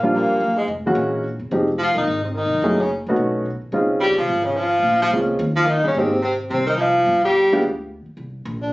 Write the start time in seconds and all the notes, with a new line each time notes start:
Already playing: A#1
0.01 G2 F3 G3 A#3 D4 F4
0.14 A#2 A#3
0.30 muted upright bass stroke
0.40 F#1
0.56 G#2 G#3
0.68 F1
0.86 E3 G#3 A#3 C#4 F#4
0.95 A#1
1.39 E1
1.51 F1 F3 G#3 C4 D#4 G4
1.78 F3
1.83 F4
1.94 E1 D#3
1.98 D#4
2.07 G#1
2.23 C3 C4
2.34 D#3 D#4
2.45 C2
2.54 G1
2.62 F#1 F#3 A3 C#4 E4 G#4
2.80 C#3 C#4
3.07 A#1 A3 B3 C#4 D#4 F#4
3.16 B1
3.62 muted upright bass stroke
3.72 C#2 G#3 C4 C#4 D#4 F4
4.00 G3 G4
4.10 F2
4.17 C2 F3 F4
4.27 G#1
4.44 C#3 C#4
4.56 F3 F4
4.82 A#1
5.02 F3 F4
5.10 C#2 G#3 A#3 C4 C#4 F4
5.39 D#2
5.56 F3 F4
5.66 D#3 D#4
5.83 G1 C#3
5.88 C#4
5.95 G#1 C3 G#3 A#3 C4 D#4
5.99 C4 G4
6.22 C3 C4
6.49 C2 C3 C4
6.66 D#3 D#4
6.78 F3 F4
7.06 G1
7.24 G3 G4
7.52 G#3 B3 D4 F4 G4
7.62 D2
8.06 muted upright bass stroke
8.17 C2
8.45 A#1
8.62 D4